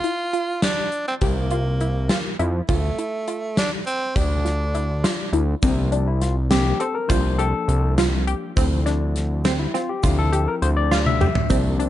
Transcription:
Already playing: tenor saxophone F4
0.04 synth arpeggio sound E4, closed hi-hat
0.33 synth arpeggio sound F4, closed hi-hat
0.62 tenor saxophone D4, snare, closed hi-hat
0.92 closed hi-hat
1.08 tenor saxophone C4
1.21 analog synth bass C2, tenor saxophone A#3, synth arpeggio sound G4, kick, closed hi-hat
1.51 synth arpeggio sound F4, closed hi-hat
1.81 synth arpeggio sound E4, closed hi-hat
2.09 synth arpeggio sound F4, snare, closed hi-hat
2.39 analog synth bass F2, synth arpeggio sound E4, closed hi-hat
2.69 analog synth bass D2, tenor saxophone A3, synth arpeggio sound F4, kick, closed hi-hat
2.99 synth arpeggio sound E4, closed hi-hat
3.28 synth arpeggio sound F4, closed hi-hat
3.57 tenor saxophone D4, snare, closed hi-hat
3.86 tenor saxophone C4, closed hi-hat
4.16 analog synth bass D2, tenor saxophone D4, synth arpeggio sound G4, kick, closed hi-hat
4.45 synth arpeggio sound F4, snare, closed hi-hat
4.75 synth arpeggio sound E4, closed hi-hat
5.04 synth arpeggio sound F4, snare, closed hi-hat
5.33 analog synth bass D2, synth arpeggio sound E4, closed hi-hat
5.62 analog synth bass C2, tine electric piano F3 A#3 D4, synth arpeggio sound C4, kick, closed hi-hat, shaker
5.91 tine electric piano D4, synth arpeggio sound D4, closed hi-hat
6.07 tine electric piano E4
6.21 tine electric piano F4, snare, closed hi-hat
6.50 tine electric piano F3 A#3 D4 G4, synth arpeggio sound C4, snare, closed hi-hat, shaker
6.80 synth arpeggio sound C4, tine electric piano A4, closed hi-hat
6.95 tine electric piano A#4
7.08 analog synth bass C2, tine electric piano F3 A#3 D4 C5, synth arpeggio sound F4, kick, closed hi-hat, shaker
7.39 synth arpeggio sound G4, tine electric piano A4, closed hi-hat
7.68 analog synth bass C2, closed hi-hat
7.98 synth arpeggio sound F4, snare, closed hi-hat, shaker
8.27 synth arpeggio sound G4, closed hi-hat
8.56 analog synth bass D2, tine electric piano F3 C4 E4, synth arpeggio sound C4, kick, closed hi-hat, shaker
8.86 synth arpeggio sound D4, snare, closed hi-hat
9.16 snare, closed hi-hat
9.45 synth arpeggio sound C4, snare, closed hi-hat, shaker
9.59 tine electric piano E4
9.74 synth arpeggio sound C4, tine electric piano F4, snare, closed hi-hat
9.89 tine electric piano G4
10.03 analog synth bass D2, tine electric piano F3 C4 E4, synth arpeggio sound F4, kick, closed hi-hat, shaker
10.19 tine electric piano A4
10.33 synth arpeggio sound G4, closed hi-hat
10.48 tine electric piano A#4
10.62 analog synth bass D2, tine electric piano C5, closed hi-hat
10.77 tine electric piano D5
10.91 synth arpeggio sound F4, snare, shaker
11.06 tine electric piano E5, high tom
11.21 synth arpeggio sound G4, mid tom, shaker
11.35 floor tom
11.49 analog synth bass C2, tine electric piano F3 A#3 D4, synth arpeggio sound C4, kick, closed hi-hat, shaker
11.79 synth arpeggio sound D4, closed hi-hat

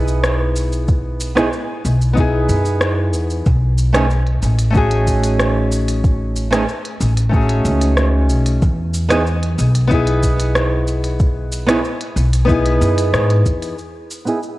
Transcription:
Already playing: upright bass B1, nylon-string guitar B3 D#4 E4 G#4
0.08 cabasa
0.24 cross-stick, cabasa
0.56 cabasa
0.72 cabasa
0.88 kick, cabasa
1.20 cabasa
1.35 nylon-string guitar B3 D#4 E4 G#4, cross-stick, cabasa
1.53 cabasa
1.85 upright bass B1, cabasa
2.01 cabasa
2.13 nylon-string guitar B3 D#4 E4, cabasa
2.17 nylon-string guitar G#4, kick
2.49 upright bass F#2, cabasa
2.65 cabasa
2.81 cross-stick, cabasa
3.13 upright bass E2, cabasa
3.30 cabasa
3.46 upright bass B1, kick, cabasa
3.78 cabasa
3.93 nylon-string guitar A3 C#4 D#4 G#4, cross-stick, closed hi-hat, cabasa
4.10 cabasa
4.27 closed hi-hat
4.42 upright bass A1, cabasa
4.59 closed hi-hat, cabasa
4.71 nylon-string guitar A3 C#4 D#4
4.75 nylon-string guitar F#4 G#4, kick, cabasa
4.91 closed hi-hat
5.07 kick, cabasa
5.23 closed hi-hat, cabasa
5.39 cross-stick, cabasa
5.72 cabasa
5.88 closed hi-hat, cabasa
6.04 kick, cabasa
6.36 cabasa
6.51 nylon-string guitar A3 C#4 D#4 G#4, cross-stick, closed hi-hat, cabasa
6.69 cabasa
6.85 closed hi-hat
7.00 upright bass A1, cabasa
7.17 closed hi-hat, cabasa
7.29 nylon-string guitar A3 C#4 D#4, kick
7.33 nylon-string guitar F#4 G#4, cabasa
7.49 closed hi-hat
7.65 upright bass C#2, cabasa
7.82 closed hi-hat, cabasa
7.97 cross-stick, cabasa
8.30 upright bass B1, cabasa
8.46 closed hi-hat, cabasa
8.62 upright bass E2, kick, cabasa
8.94 cabasa
9.09 nylon-string guitar B3 D#4 E4 G#4, cross-stick, closed hi-hat, cabasa
9.27 cabasa
9.43 closed hi-hat
9.58 upright bass B1, cabasa
9.75 closed hi-hat, cabasa
9.87 nylon-string guitar B3 D#4 E4, kick, cabasa
9.94 nylon-string guitar G#4
10.07 closed hi-hat
10.23 kick, cabasa
10.40 closed hi-hat, cabasa
10.55 cross-stick, cabasa
10.88 cabasa
11.04 closed hi-hat, cabasa
11.20 kick, cabasa
11.52 cabasa
11.67 nylon-string guitar B3 D#4 E4 G#4, cross-stick, closed hi-hat, cabasa
11.85 cabasa
12.01 closed hi-hat
12.16 upright bass B1, cabasa
12.33 closed hi-hat, cabasa
12.45 nylon-string guitar B3 D#4 E4
12.49 nylon-string guitar G#4, kick, cabasa
12.66 closed hi-hat
12.81 upright bass F#2, cabasa
12.98 closed hi-hat, cabasa
13.13 upright bass G#2, cross-stick, cabasa
13.30 closed hi-hat
13.46 upright bass E2, kick, cabasa
13.63 closed hi-hat, cabasa
13.78 cabasa
14.11 cabasa
14.25 nylon-string guitar B3 D#4 E4 G#4, cabasa
14.43 cabasa

